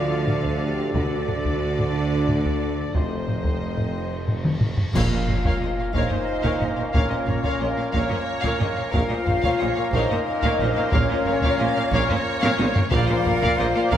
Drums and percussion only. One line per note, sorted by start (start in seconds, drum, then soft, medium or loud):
0.28 taiko low-mid medium
0.45 taiko medium
0.95 taiko loud
1.28 taiko low-mid medium
1.45 taiko medium
1.79 taiko low-mid medium
2.28 taiko low-mid medium
2.45 taiko medium
2.95 taiko loud
3.28 taiko low-mid medium
3.44 taiko medium
3.78 taiko low-mid medium
4.28 taiko low-mid medium
4.45 taiko mid medium
4.61 taiko low-mid loud
4.77 taiko low loud
4.95 concert bass drum medium
4.95 taiko loud
4.95 crash medium
5.28 taiko low medium
5.45 taiko medium
5.94 taiko medium
6.12 taiko low medium
6.45 taiko medium
6.61 taiko low medium
6.94 taiko loud
7.28 taiko low medium
7.44 taiko medium
7.94 taiko medium
8.11 taiko low medium
8.44 taiko medium
8.61 taiko low medium
8.94 taiko loud
9.27 taiko low medium
9.44 taiko medium
9.93 taiko medium
10.10 taiko low medium
10.42 taiko medium
10.59 taiko low medium
10.92 taiko loud
11.25 taiko low medium
11.42 taiko loud
11.92 taiko medium
12.10 taiko low medium
12.43 taiko high loud
12.59 taiko high loud
12.76 taiko low loud
12.92 taiko loud
13.26 taiko low medium
13.43 taiko loud
13.92 taiko medium